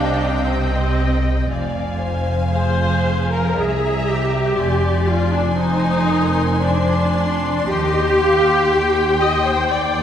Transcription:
0, 0, Header, 1, 6, 480
1, 0, Start_track
1, 0, Key_signature, -3, "minor"
1, 0, Tempo, 1039861
1, 693, Time_signature, 3, 2, 24, 8
1, 1653, Tempo, 1006711
1, 3093, Tempo, 1086957
1, 3573, Tempo, 998336
1, 4698, End_track
2, 0, Start_track
2, 0, Title_t, "Violin section"
2, 0, Program_c, 0, 48
2, 0, Note_on_c, 0, 75, 69
2, 0, Note_on_c, 0, 79, 65
2, 676, Note_off_c, 0, 75, 0
2, 677, Note_off_c, 0, 79, 0
2, 694, Note_on_c, 0, 77, 63
2, 694, Note_on_c, 0, 80, 67
2, 1636, Note_off_c, 0, 77, 0
2, 1636, Note_off_c, 0, 80, 0
2, 1653, Note_on_c, 0, 82, 67
2, 1655, Note_on_c, 0, 76, 77
2, 2114, Note_off_c, 0, 82, 0
2, 2115, Note_off_c, 0, 76, 0
2, 2132, Note_on_c, 0, 84, 66
2, 2134, Note_on_c, 0, 80, 73
2, 3556, Note_off_c, 0, 80, 0
2, 3578, Note_on_c, 0, 79, 68
2, 4698, Note_off_c, 0, 79, 0
2, 4698, Note_off_c, 0, 84, 0
2, 4698, End_track
3, 0, Start_track
3, 0, Title_t, "Violin section"
3, 0, Program_c, 1, 48
3, 0, Note_on_c, 1, 77, 69
3, 214, Note_off_c, 1, 77, 0
3, 214, Note_on_c, 1, 75, 77
3, 693, Note_off_c, 1, 75, 0
3, 695, Note_on_c, 1, 74, 73
3, 927, Note_off_c, 1, 74, 0
3, 928, Note_on_c, 1, 72, 70
3, 1168, Note_off_c, 1, 72, 0
3, 1168, Note_on_c, 1, 68, 77
3, 1653, Note_off_c, 1, 68, 0
3, 1653, Note_on_c, 1, 76, 77
3, 2131, Note_on_c, 1, 74, 69
3, 2133, Note_off_c, 1, 76, 0
3, 2600, Note_on_c, 1, 72, 70
3, 2601, Note_off_c, 1, 74, 0
3, 2841, Note_off_c, 1, 72, 0
3, 2846, Note_on_c, 1, 70, 65
3, 3088, Note_off_c, 1, 70, 0
3, 3090, Note_on_c, 1, 72, 71
3, 3331, Note_off_c, 1, 72, 0
3, 3331, Note_on_c, 1, 74, 70
3, 3568, Note_off_c, 1, 74, 0
3, 3570, Note_on_c, 1, 75, 78
3, 3816, Note_on_c, 1, 77, 77
3, 3819, Note_off_c, 1, 75, 0
3, 4055, Note_off_c, 1, 77, 0
3, 4063, Note_on_c, 1, 79, 90
3, 4698, Note_off_c, 1, 79, 0
3, 4698, End_track
4, 0, Start_track
4, 0, Title_t, "Viola section"
4, 0, Program_c, 2, 48
4, 0, Note_on_c, 2, 62, 94
4, 212, Note_off_c, 2, 62, 0
4, 212, Note_on_c, 2, 60, 82
4, 692, Note_off_c, 2, 60, 0
4, 1170, Note_on_c, 2, 72, 90
4, 1515, Note_off_c, 2, 72, 0
4, 1534, Note_on_c, 2, 70, 88
4, 1653, Note_on_c, 2, 68, 91
4, 1655, Note_off_c, 2, 70, 0
4, 1896, Note_on_c, 2, 67, 95
4, 1898, Note_off_c, 2, 68, 0
4, 2362, Note_on_c, 2, 65, 95
4, 2363, Note_off_c, 2, 67, 0
4, 2480, Note_off_c, 2, 65, 0
4, 2481, Note_on_c, 2, 62, 84
4, 2599, Note_on_c, 2, 63, 103
4, 2602, Note_off_c, 2, 62, 0
4, 3091, Note_off_c, 2, 63, 0
4, 3093, Note_on_c, 2, 62, 98
4, 3563, Note_off_c, 2, 62, 0
4, 3574, Note_on_c, 2, 67, 121
4, 4289, Note_off_c, 2, 67, 0
4, 4303, Note_on_c, 2, 75, 97
4, 4421, Note_off_c, 2, 75, 0
4, 4422, Note_on_c, 2, 72, 93
4, 4537, Note_on_c, 2, 74, 84
4, 4539, Note_off_c, 2, 72, 0
4, 4698, Note_off_c, 2, 74, 0
4, 4698, End_track
5, 0, Start_track
5, 0, Title_t, "Cello section"
5, 0, Program_c, 3, 48
5, 0, Note_on_c, 3, 48, 78
5, 675, Note_off_c, 3, 48, 0
5, 694, Note_on_c, 3, 41, 75
5, 1636, Note_off_c, 3, 41, 0
5, 1657, Note_on_c, 3, 36, 72
5, 2135, Note_off_c, 3, 36, 0
5, 2137, Note_on_c, 3, 41, 83
5, 3557, Note_off_c, 3, 41, 0
5, 3575, Note_on_c, 3, 39, 74
5, 4698, Note_off_c, 3, 39, 0
5, 4698, End_track
6, 0, Start_track
6, 0, Title_t, "Double bass section"
6, 0, Program_c, 4, 48
6, 0, Note_on_c, 4, 36, 77
6, 675, Note_off_c, 4, 36, 0
6, 693, Note_on_c, 4, 29, 77
6, 1636, Note_off_c, 4, 29, 0
6, 1656, Note_on_c, 4, 36, 71
6, 2134, Note_off_c, 4, 36, 0
6, 2139, Note_on_c, 4, 29, 80
6, 3558, Note_off_c, 4, 29, 0
6, 3574, Note_on_c, 4, 39, 75
6, 4698, Note_off_c, 4, 39, 0
6, 4698, End_track
0, 0, End_of_file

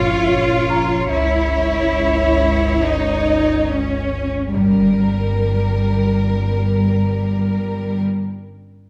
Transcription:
0, 0, Header, 1, 7, 480
1, 0, Start_track
1, 0, Tempo, 500000
1, 8540, End_track
2, 0, Start_track
2, 0, Title_t, "Celesta"
2, 0, Program_c, 0, 8
2, 0, Control_c, 0, 64, 127
2, 672, Note_on_c, 0, 82, 33
2, 1093, Control_c, 0, 64, 0
2, 1250, Control_c, 0, 64, 127
2, 3098, Note_off_c, 0, 82, 0
2, 4383, Control_c, 0, 64, 0
2, 4535, Control_c, 0, 64, 127
2, 7676, Control_c, 0, 64, 0
2, 8540, End_track
3, 0, Start_track
3, 0, Title_t, "Violin section"
3, 0, Program_c, 1, 48
3, 0, Note_on_c, 1, 73, 44
3, 1037, Note_off_c, 1, 73, 0
3, 1063, Note_on_c, 1, 73, 47
3, 4130, Note_off_c, 1, 73, 0
3, 4365, Note_on_c, 1, 70, 32
3, 7694, Note_off_c, 1, 70, 0
3, 8540, End_track
4, 0, Start_track
4, 0, Title_t, "Cello section"
4, 0, Program_c, 2, 48
4, 0, Note_on_c, 2, 65, 57
4, 1072, Note_on_c, 2, 64, 59
4, 1075, Note_off_c, 2, 65, 0
4, 2687, Note_off_c, 2, 64, 0
4, 2718, Note_on_c, 2, 63, 52
4, 3542, Note_off_c, 2, 63, 0
4, 3543, Note_on_c, 2, 61, 40
4, 4363, Note_on_c, 2, 55, 35
4, 4367, Note_off_c, 2, 61, 0
4, 7692, Note_off_c, 2, 55, 0
4, 8540, End_track
5, 0, Start_track
5, 0, Title_t, "Double bass section"
5, 0, Program_c, 3, 48
5, 0, Note_on_c, 3, 34, 44
5, 1039, Note_off_c, 3, 34, 0
5, 1076, Note_on_c, 3, 37, 49
5, 4175, Note_off_c, 3, 37, 0
5, 4372, Note_on_c, 3, 31, 31
5, 7701, Note_off_c, 3, 31, 0
5, 8540, End_track
6, 0, Start_track
6, 0, Title_t, "Synth drone"
6, 0, Program_c, 4, 95
6, 0, Note_on_c, 4, 31, 66
6, 1036, Note_off_c, 4, 31, 0
6, 1084, Note_on_c, 4, 31, 64
6, 4333, Note_off_c, 4, 31, 0
6, 4382, Note_on_c, 4, 31, 57
6, 7711, Note_off_c, 4, 31, 0
6, 8540, End_track
7, 0, Start_track
7, 0, Title_t, "Impact"
7, 0, Program_c, 5, 103
7, 4362, Note_on_c, 5, 60, 28
7, 7730, Note_off_c, 5, 60, 0
7, 8540, End_track
0, 0, End_of_file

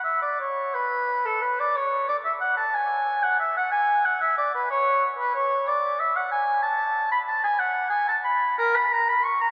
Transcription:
0, 0, Header, 1, 2, 480
1, 0, Start_track
1, 0, Key_signature, 3, "minor"
1, 0, Tempo, 705882
1, 513, Time_signature, 6, 3, 24, 8
1, 513, Tempo, 665927
1, 1953, Tempo, 645161
1, 5793, Tempo, 658617
1, 6957, End_track
2, 0, Start_track
2, 0, Title_t, "Oboe"
2, 0, Program_c, 0, 68
2, 26, Note_on_c, 0, 76, 76
2, 146, Note_off_c, 0, 76, 0
2, 150, Note_on_c, 0, 74, 68
2, 266, Note_off_c, 0, 74, 0
2, 270, Note_on_c, 0, 73, 71
2, 505, Note_on_c, 0, 71, 88
2, 515, Note_off_c, 0, 73, 0
2, 874, Note_on_c, 0, 69, 75
2, 885, Note_off_c, 0, 71, 0
2, 990, Note_on_c, 0, 71, 77
2, 1001, Note_off_c, 0, 69, 0
2, 1118, Note_on_c, 0, 74, 88
2, 1129, Note_off_c, 0, 71, 0
2, 1236, Note_on_c, 0, 73, 79
2, 1247, Note_off_c, 0, 74, 0
2, 1468, Note_off_c, 0, 73, 0
2, 1472, Note_on_c, 0, 74, 79
2, 1528, Note_off_c, 0, 74, 0
2, 1589, Note_on_c, 0, 76, 78
2, 1644, Note_off_c, 0, 76, 0
2, 1705, Note_on_c, 0, 78, 81
2, 1817, Note_off_c, 0, 78, 0
2, 1822, Note_on_c, 0, 81, 78
2, 1944, Note_on_c, 0, 80, 91
2, 1955, Note_off_c, 0, 81, 0
2, 2307, Note_on_c, 0, 78, 86
2, 2318, Note_off_c, 0, 80, 0
2, 2426, Note_off_c, 0, 78, 0
2, 2431, Note_on_c, 0, 76, 75
2, 2553, Note_off_c, 0, 76, 0
2, 2560, Note_on_c, 0, 78, 89
2, 2665, Note_off_c, 0, 78, 0
2, 2669, Note_on_c, 0, 80, 93
2, 2917, Note_on_c, 0, 78, 79
2, 2929, Note_off_c, 0, 80, 0
2, 3035, Note_off_c, 0, 78, 0
2, 3040, Note_on_c, 0, 76, 83
2, 3159, Note_off_c, 0, 76, 0
2, 3164, Note_on_c, 0, 74, 73
2, 3283, Note_off_c, 0, 74, 0
2, 3288, Note_on_c, 0, 71, 68
2, 3404, Note_off_c, 0, 71, 0
2, 3408, Note_on_c, 0, 73, 92
2, 3660, Note_off_c, 0, 73, 0
2, 3766, Note_on_c, 0, 71, 70
2, 3879, Note_off_c, 0, 71, 0
2, 3884, Note_on_c, 0, 73, 87
2, 4130, Note_on_c, 0, 74, 90
2, 4141, Note_off_c, 0, 73, 0
2, 4369, Note_on_c, 0, 76, 80
2, 4380, Note_off_c, 0, 74, 0
2, 4489, Note_on_c, 0, 78, 73
2, 4500, Note_off_c, 0, 76, 0
2, 4599, Note_off_c, 0, 78, 0
2, 4604, Note_on_c, 0, 80, 81
2, 4830, Note_off_c, 0, 80, 0
2, 4835, Note_on_c, 0, 81, 91
2, 5188, Note_off_c, 0, 81, 0
2, 5200, Note_on_c, 0, 83, 92
2, 5253, Note_off_c, 0, 83, 0
2, 5320, Note_on_c, 0, 81, 83
2, 5435, Note_off_c, 0, 81, 0
2, 5439, Note_on_c, 0, 80, 91
2, 5555, Note_on_c, 0, 78, 89
2, 5566, Note_off_c, 0, 80, 0
2, 5778, Note_off_c, 0, 78, 0
2, 5783, Note_on_c, 0, 80, 93
2, 5905, Note_off_c, 0, 80, 0
2, 5916, Note_on_c, 0, 81, 83
2, 5970, Note_off_c, 0, 81, 0
2, 6033, Note_on_c, 0, 83, 90
2, 6276, Note_off_c, 0, 83, 0
2, 6279, Note_on_c, 0, 70, 111
2, 6410, Note_on_c, 0, 83, 89
2, 6421, Note_off_c, 0, 70, 0
2, 6528, Note_on_c, 0, 82, 100
2, 6539, Note_off_c, 0, 83, 0
2, 6649, Note_on_c, 0, 83, 94
2, 6660, Note_off_c, 0, 82, 0
2, 6756, Note_on_c, 0, 85, 86
2, 6767, Note_off_c, 0, 83, 0
2, 6874, Note_off_c, 0, 85, 0
2, 6883, Note_on_c, 0, 82, 102
2, 6933, Note_off_c, 0, 82, 0
2, 6957, End_track
0, 0, End_of_file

